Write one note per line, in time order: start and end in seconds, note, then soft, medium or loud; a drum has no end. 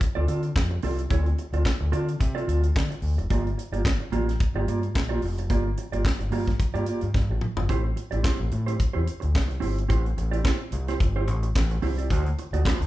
0.00 muted clean electric guitar stroke soft
0.00 kick loud
0.00 closed hi-hat medium
0.15 0.25 D2 medium
0.15 0.26 C4 medium
0.15 0.26 F4 medium
0.15 0.27 A4 medium
0.15 0.27 D5 medium
0.27 0.49 D3 medium
0.27 0.41 C4 medium
0.27 0.41 F4 medium
0.27 0.41 A4 medium
0.27 0.41 D5 medium
0.27 closed hi-hat medium
0.43 muted clean electric guitar stroke soft
0.43 closed hi-hat soft
0.56 0.76 F2 medium
0.56 kick loud
0.56 snare loud
0.56 clap medium
0.71 muted clean electric guitar stroke soft
0.82 1.04 C2 medium
0.82 1.00 C4 medium
0.82 0.99 F4 medium
0.82 0.98 A4 loud
0.82 0.98 D5 medium
0.82 open hi-hat medium
0.98 muted clean electric guitar stroke medium
0.98 closed hi-hat soft
1.10 1.31 D2 loud
1.10 1.31 C4 medium
1.10 1.25 F4 medium
1.10 1.25 A4 medium
1.10 1.24 D5 medium
1.10 kick loud
1.10 closed hi-hat medium
1.25 muted clean electric guitar stroke soft
1.25 closed hi-hat soft
1.38 muted clean electric guitar stroke medium
1.38 closed hi-hat medium
1.53 1.62 D2 medium
1.53 1.64 C4 soft
1.53 1.64 F4 medium
1.53 1.64 A4 medium
1.53 1.64 D5 medium
1.53 closed hi-hat soft
1.65 muted clean electric guitar stroke soft
1.65 kick loud
1.65 snare loud
1.65 clap medium
1.81 1.90 D2 medium
1.81 muted clean electric guitar stroke soft
1.92 2.14 D3 medium
1.92 2.09 C4 medium
1.92 2.07 F4 medium
1.92 2.07 A4 loud
1.92 2.07 D5 loud
1.92 closed hi-hat medium
2.08 muted clean electric guitar stroke medium
2.08 closed hi-hat soft
2.20 2.41 C3 loud
2.20 muted clean electric guitar stroke soft
2.20 kick loud
2.20 closed hi-hat medium
2.35 2.46 C4 medium
2.35 2.46 F4 medium
2.35 2.46 A4 medium
2.35 2.47 D5 medium
2.35 closed hi-hat soft
2.47 2.68 D2 medium
2.47 2.60 C4 medium
2.47 2.61 F4 medium
2.47 2.61 A4 medium
2.47 2.61 D5 medium
2.47 closed hi-hat medium
2.63 muted clean electric guitar stroke medium
2.63 closed hi-hat soft
2.76 2.87 D3 medium
2.76 muted clean electric guitar stroke soft
2.76 kick loud
2.76 snare loud
2.76 clap medium
2.91 muted clean electric guitar stroke soft
2.91 closed hi-hat soft
3.02 3.14 D2 medium
3.02 open hi-hat medium
3.17 3.26 F1 medium
3.17 muted clean electric guitar stroke soft
3.17 closed hi-hat soft
3.30 3.51 G1 loud
3.30 3.47 A#3 medium
3.30 3.45 F4 medium
3.30 3.45 G4 medium
3.30 3.44 D5 loud
3.30 kick loud
3.30 closed hi-hat medium
3.45 muted clean electric guitar stroke medium
3.45 closed hi-hat soft
3.57 muted clean electric guitar stroke soft
3.57 closed hi-hat medium
3.72 3.93 G1 medium
3.72 3.83 A#3 soft
3.72 3.83 F4 soft
3.72 3.83 G4 medium
3.72 3.83 D5 medium
3.72 closed hi-hat soft
3.85 kick loud
3.85 snare loud
3.85 clap medium
4.00 muted clean electric guitar stroke soft
4.12 4.33 A1 medium
4.12 4.29 A#3 medium
4.12 4.28 F4 loud
4.12 4.28 G4 loud
4.12 4.27 D5 medium
4.12 closed hi-hat medium
4.28 muted clean electric guitar stroke soft
4.28 snare soft
4.28 closed hi-hat soft
4.40 muted clean electric guitar stroke soft
4.40 kick loud
4.40 closed hi-hat medium
4.54 4.64 G1 medium
4.54 4.67 A#3 medium
4.54 4.67 F4 medium
4.54 4.67 G4 medium
4.54 4.68 D5 medium
4.67 4.87 G2 medium
4.67 4.81 A#3 medium
4.67 4.81 F4 medium
4.67 4.81 G4 medium
4.67 4.80 D5 medium
4.67 closed hi-hat medium
4.81 muted clean electric guitar stroke soft
4.81 closed hi-hat soft
4.94 5.16 A#1 medium
4.94 muted clean electric guitar stroke soft
4.94 kick loud
4.94 snare loud
4.94 clap medium
5.09 5.21 A#3 medium
5.09 5.22 F4 medium
5.09 5.22 G4 medium
5.09 5.22 D5 medium
5.22 5.50 F1 medium
5.22 muted clean electric guitar stroke soft
5.22 open hi-hat medium
5.38 muted clean electric guitar stroke soft
5.38 closed hi-hat medium
5.50 5.71 G1 loud
5.50 5.66 A#3 medium
5.50 5.66 F4 medium
5.50 5.65 G4 loud
5.50 5.65 D5 medium
5.50 kick medium
5.50 closed hi-hat medium
5.66 muted clean electric guitar stroke soft
5.77 muted clean electric guitar stroke medium
5.77 closed hi-hat medium
5.92 6.02 G1 medium
5.92 6.03 A#3 soft
5.92 6.03 F4 medium
5.92 6.03 G4 medium
5.92 6.03 D5 medium
5.92 closed hi-hat soft
6.05 kick loud
6.05 snare loud
6.05 clap medium
6.19 6.29 G1 medium
6.19 muted clean electric guitar stroke soft
6.19 closed hi-hat soft
6.31 6.52 G2 medium
6.31 6.49 A#3 medium
6.31 6.47 F4 medium
6.31 6.46 G4 medium
6.31 6.45 D5 medium
6.31 open hi-hat medium
6.47 muted clean electric guitar stroke soft
6.47 kick medium
6.47 snare soft
6.47 closed hi-hat soft
6.59 muted clean electric guitar stroke soft
6.59 kick loud
6.59 closed hi-hat medium
6.74 6.84 G2 medium
6.74 6.86 A#3 medium
6.74 6.87 F4 medium
6.74 6.88 G4 medium
6.74 6.88 D5 medium
6.74 closed hi-hat soft
6.86 7.00 A#3 medium
6.86 7.01 F4 medium
6.86 7.01 G4 medium
6.86 7.01 D5 medium
6.86 closed hi-hat medium
7.01 7.12 G2 medium
7.01 muted clean electric guitar stroke soft
7.01 closed hi-hat soft
7.14 7.26 G2 medium
7.14 muted clean electric guitar stroke soft
7.14 kick loud
7.14 snare medium
7.29 7.38 A1 medium
7.29 muted clean electric guitar stroke soft
7.41 mid tom medium
7.57 7.66 G1 medium
7.57 muted clean electric guitar stroke soft
7.57 floor tom medium
7.69 7.90 A1 loud
7.69 7.86 C4 medium
7.69 7.84 E4 medium
7.69 7.83 G4 medium
7.69 7.83 C5 loud
7.69 kick medium
7.69 closed hi-hat medium
7.84 muted clean electric guitar stroke soft
7.96 muted clean electric guitar stroke soft
7.96 closed hi-hat medium
8.11 8.21 A1 medium
8.11 8.22 C4 soft
8.11 8.22 E4 medium
8.11 8.22 G4 medium
8.11 8.22 D5 medium
8.11 closed hi-hat soft
8.23 8.40 C4 medium
8.23 8.39 E4 medium
8.23 8.39 G4 medium
8.23 8.39 C5 medium
8.23 kick loud
8.23 snare loud
8.23 clap medium
8.40 8.49 A1 loud
8.40 muted clean electric guitar stroke soft
8.51 8.72 A2 loud
8.51 muted clean electric guitar stroke soft
8.51 closed hi-hat soft
8.66 8.78 C4 soft
8.66 8.78 E4 medium
8.66 8.78 G4 medium
8.66 8.77 C5 medium
8.66 closed hi-hat medium
8.79 muted clean electric guitar stroke soft
8.79 kick loud
8.79 closed hi-hat medium
8.93 9.04 E2 medium
8.93 9.05 C4 medium
8.93 9.05 E4 medium
8.93 9.05 G4 medium
8.93 9.06 C5 medium
9.06 muted clean electric guitar stroke soft
9.06 closed hi-hat medium
9.20 9.32 D2 medium
9.20 muted clean electric guitar stroke medium
9.20 closed hi-hat soft
9.35 9.55 C2 medium
9.35 kick loud
9.35 snare loud
9.35 clap medium
9.48 muted clean electric guitar stroke soft
9.48 closed hi-hat soft
9.60 9.83 G1 loud
9.60 9.78 C4 medium
9.60 9.77 E4 medium
9.60 9.76 G4 medium
9.60 9.76 C5 medium
9.60 open hi-hat medium
9.77 muted clean electric guitar stroke soft
9.77 closed hi-hat medium
9.88 10.10 A1 medium
9.88 10.06 C4 medium
9.88 10.04 E4 medium
9.88 10.04 G4 loud
9.88 10.04 C5 loud
9.88 kick loud
9.88 closed hi-hat medium
10.05 muted clean electric guitar stroke soft
10.05 closed hi-hat soft
10.17 10.38 A1 loud
10.17 muted clean electric guitar stroke soft
10.17 closed hi-hat medium
10.31 10.42 C4 medium
10.31 10.43 E4 medium
10.31 10.42 G4 medium
10.31 10.42 D5 medium
10.31 closed hi-hat soft
10.44 10.61 C4 medium
10.44 10.60 E4 medium
10.44 10.59 G4 medium
10.44 10.58 C5 medium
10.44 kick loud
10.44 snare loud
10.44 clap medium
10.60 muted clean electric guitar stroke soft
10.72 10.93 C2 loud
10.72 muted clean electric guitar stroke soft
10.72 closed hi-hat medium
10.88 10.99 C4 medium
10.88 10.99 E4 medium
10.88 10.98 G4 medium
10.88 10.98 C5 medium
10.88 snare soft
10.88 closed hi-hat soft
11.00 11.27 G1 loud
11.00 muted clean electric guitar stroke soft
11.00 kick loud
11.00 closed hi-hat medium
11.16 11.27 C4 medium
11.16 11.27 E4 medium
11.16 11.28 G4 medium
11.16 11.28 C5 medium
11.27 11.48 A1 medium
11.27 muted clean electric guitar stroke soft
11.27 closed hi-hat medium
11.43 muted clean electric guitar stroke soft
11.43 closed hi-hat soft
11.55 11.76 A1 loud
11.55 muted clean electric guitar stroke soft
11.55 kick loud
11.55 snare medium
11.55 clap medium
11.71 muted clean electric guitar stroke soft
11.71 closed hi-hat soft
11.82 12.10 C2 medium
11.82 11.98 C4 medium
11.82 11.98 E4 medium
11.82 11.97 G4 medium
11.82 11.97 C5 medium
11.82 open hi-hat medium
11.98 12.09 C4 soft
11.98 12.09 E4 medium
11.98 12.08 G4 medium
11.98 12.08 D5 medium
11.98 closed hi-hat soft
12.10 12.31 D2 loud
12.10 12.27 A3 medium
12.10 12.25 D#4 medium
12.10 12.25 F#4 medium
12.10 12.25 C5 loud
12.10 kick loud
12.10 closed hi-hat medium
12.26 muted clean electric guitar stroke soft
12.26 closed hi-hat soft
12.38 muted clean electric guitar stroke soft
12.38 closed hi-hat medium
12.53 12.62 D2 medium
12.53 12.64 A3 soft
12.53 12.64 D#4 medium
12.53 12.64 F#4 medium
12.53 12.63 D5 medium
12.53 closed hi-hat soft
12.65 12.86 A3 medium
12.65 12.80 D#4 medium
12.65 12.79 F#4 medium
12.65 12.79 C5 medium
12.65 kick loud
12.65 snare loud
12.65 clap medium
12.80 12.87 D2 medium
12.80 muted clean electric guitar stroke soft
12.80 closed hi-hat soft